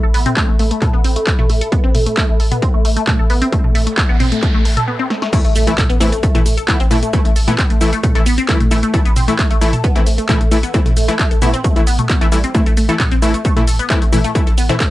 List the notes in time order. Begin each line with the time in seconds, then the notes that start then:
Already playing: A4 E5 B5
0.03 A1 A4
0.14 A1 B3, open hi-hat
0.26 C4, closed hi-hat, mid tom
0.37 A3, kick, clap, closed hi-hat
0.48 A1 A3
0.59 A1 A3, open hi-hat
0.71 A3, closed hi-hat
0.82 A4, kick, clap, closed hi-hat, mid tom
0.93 A1 B3
1.04 A1 C4, open hi-hat
1.16 A3, closed hi-hat
1.27 A3, kick, clap, closed hi-hat
1.39 A1 A3, mid tom
1.49 A1 A3, open hi-hat
1.61 A4, closed hi-hat
1.72 B3, kick, closed hi-hat
1.84 A1 C4
1.95 A1 A3, mid tom, open hi-hat
2.06 A3, closed hi-hat
2.17 A3, kick, clap, closed hi-hat
2.29 A1 A3
2.40 A1 A4, open hi-hat
2.51 B3, closed hi-hat, mid tom
2.62 C4, kick, closed hi-hat
2.74 A1 A3
2.85 A1 A3, open hi-hat
2.97 A3, closed hi-hat
3.07 A3, kick, clap, closed hi-hat, mid tom
3.19 A1 A4
3.30 A1 B3, open hi-hat
3.42 C4, closed hi-hat
3.52 A3, kick, closed hi-hat, noise sweep
3.64 A1 A3, mid tom
3.75 A1 A3, open hi-hat
3.87 A3, closed hi-hat
3.97 A4, kick, clap, closed hi-hat
4.09 A1 B3
4.20 A1 C4, mid tom, open hi-hat
4.32 A3, closed hi-hat
4.43 A3, kick, clap, closed hi-hat
4.54 A1 A3
4.65 A1 A3, open hi-hat
4.77 A4, closed hi-hat, mid tom
4.88 B3
4.99 C4
5.10 A3, snare
5.22 A3, snare
5.33 E3 A3 E4, kick, closed hi-hat, crash, impact, shaker
5.44 A1 A3, closed hi-hat, shaker
5.55 A1 A3, open hi-hat, shaker
5.67 E3 A3 E4, closed hi-hat, shaker
5.78 A4, kick, clap, closed hi-hat, mid tom, shaker
5.90 A1 B3, closed hi-hat, shaker
6.00 A1 E3 A3 C4 E4, open hi-hat, shaker
6.12 A3, closed hi-hat, shaker
6.23 A3, kick, closed hi-hat, shaker
6.35 A1 E3 A3 E4, closed hi-hat, mid tom, shaker
6.46 A1 A3, open hi-hat, shaker
6.57 A4, closed hi-hat, shaker
6.68 E3 A3 B3 E4, kick, clap, closed hi-hat, shaker
6.80 A1 C4, closed hi-hat, shaker
6.91 A1 E3 A3 E4, mid tom, open hi-hat, shaker
7.03 A3, closed hi-hat, shaker
7.13 E3 A3 E4, kick, closed hi-hat, shaker
7.25 A1 A3, closed hi-hat, shaker
7.36 A1 A4, open hi-hat, shaker
7.48 E3 A3 B3 E4, closed hi-hat, mid tom, shaker
7.58 C4, kick, clap, closed hi-hat, shaker
7.70 A1 A3, closed hi-hat, shaker
7.81 A1 E3 A3 E4, open hi-hat, shaker
7.93 A3, closed hi-hat, shaker
8.03 A3, kick, closed hi-hat, mid tom, shaker
8.15 A1 E3 A3 E4 A4, closed hi-hat, shaker
8.26 A1 B3, open hi-hat, shaker
8.38 C4, closed hi-hat, shaker
8.49 E3 A3 E4, kick, clap, closed hi-hat, shaker
8.60 A1 A3, closed hi-hat, mid tom, shaker
8.71 A1 E3 A3 E4, open hi-hat, shaker
8.83 A3, closed hi-hat, shaker
8.94 E3 A3 E4 A4, kick, closed hi-hat, shaker
9.05 A1 B3, closed hi-hat, shaker
9.16 A1 C4, mid tom, open hi-hat, shaker
9.28 E3 A3 E4, closed hi-hat, shaker
9.39 A3, kick, clap, closed hi-hat, shaker
9.50 A1 A3, closed hi-hat, shaker
9.61 A1 E3 A3 E4, open hi-hat, shaker
9.73 A4, closed hi-hat, mid tom, shaker
9.84 B3, kick, closed hi-hat, shaker
9.96 A1 E3 A3 C4 E4, closed hi-hat, shaker
10.06 A1 A3, open hi-hat, shaker
10.18 A3, closed hi-hat, shaker
10.29 E3 A3 E4, kick, clap, closed hi-hat, mid tom, shaker
10.41 A1 A3, closed hi-hat, shaker
10.51 A1 E3 A3 E4 A4, open hi-hat, shaker
10.63 B3, closed hi-hat, shaker
10.74 E3 A3 C4 E4, kick, closed hi-hat, shaker
10.86 A1 A3, closed hi-hat, mid tom, shaker
10.97 A1 A3, open hi-hat, shaker
11.08 E3 A3 E4, closed hi-hat, shaker
11.19 A3, kick, clap, closed hi-hat, shaker
11.31 A1 A4, closed hi-hat, shaker
11.42 A1 E3 A3 B3 E4, mid tom, open hi-hat, shaker
11.54 C4, closed hi-hat, shaker
11.64 A3, kick, closed hi-hat, shaker
11.76 A1 E3 A3 E4, closed hi-hat, shaker
11.87 A1 B3, open hi-hat, shaker
11.99 A3, closed hi-hat, mid tom, shaker
12.09 B3, kick, clap, closed hi-hat, shaker
12.21 A1 E3 A3 E4, closed hi-hat, shaker
12.32 A1 E3 G3 A3 E4, open hi-hat, shaker
12.44 C4, closed hi-hat, shaker
12.55 E3 A3 E4, kick, closed hi-hat, shaker
12.66 A1 A3, closed hi-hat, shaker
12.77 A1 A3, open hi-hat, shaker
12.89 E3 A3 E4 A4, closed hi-hat, shaker
13.00 B3, kick, clap, closed hi-hat, mid tom, shaker
13.11 A1 C4, closed hi-hat, shaker
13.22 A1 E3 A3 E4, open hi-hat, shaker
13.34 A3, closed hi-hat, shaker
13.45 A3, kick, closed hi-hat, shaker
13.56 A1 E3 A3 E4, closed hi-hat, mid tom, shaker
13.67 A1 A4, open hi-hat, shaker
13.79 B3, closed hi-hat, shaker
13.90 E3 A3 C4 E4, kick, clap, closed hi-hat, shaker
14.02 A1 A3, closed hi-hat, shaker
14.12 A1 E3 A3 E4, mid tom, open hi-hat, shaker
14.24 A3, closed hi-hat, shaker
14.35 E3 A3 E4, kick, closed hi-hat, shaker
14.47 A1 A4, closed hi-hat, shaker
14.57 A1 B3, open hi-hat, shaker
14.69 E3 A3 C4 E4, closed hi-hat, mid tom, shaker
14.80 A3, kick, clap, closed hi-hat, shaker